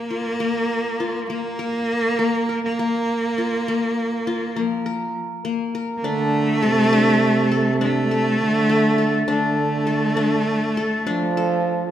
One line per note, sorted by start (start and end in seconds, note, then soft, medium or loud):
0.00 0.40 A#3 medium
0.00 1.26 A#3 loud
0.10 1.00 F4 medium
0.40 1.29 A#3 medium
1.00 2.35 F4 medium
1.29 2.60 A#3 loud
1.29 2.18 A#3 medium
1.59 2.49 A#4 medium
2.19 2.79 A#3 medium
2.49 3.62 A#4 medium
2.64 4.60 A#3 loud
2.79 3.68 A#3 medium
3.38 4.27 F4 medium
3.68 4.56 A#3 medium
4.27 5.62 F4 medium
4.56 5.17 F3 medium
4.56 5.44 A#3 medium
4.86 5.74 A#4 medium
5.45 6.69 A#3 medium
5.75 6.69 A#4 medium
5.97 6.05 A#3 medium
6.03 6.64 D3 loud
6.03 7.80 A3 loud
6.03 6.92 D4 medium
6.63 8.39 C3 medium
6.63 7.51 A4 medium
6.93 7.81 D4 medium
7.52 8.11 A4 medium
7.81 9.25 A3 loud
7.81 9.27 D4 medium
8.11 8.98 A4 medium
8.40 9.24 D3 medium
8.69 10.47 A3 medium
8.98 9.86 A4 medium
9.27 10.76 D3 loud
9.27 11.91 A3 loud
9.27 10.16 D4 medium
9.87 10.77 A4 medium
10.17 11.06 D4 medium
10.77 11.37 A4 medium
11.07 11.91 F3 loud
11.07 11.91 D4 medium
11.37 11.91 A4 medium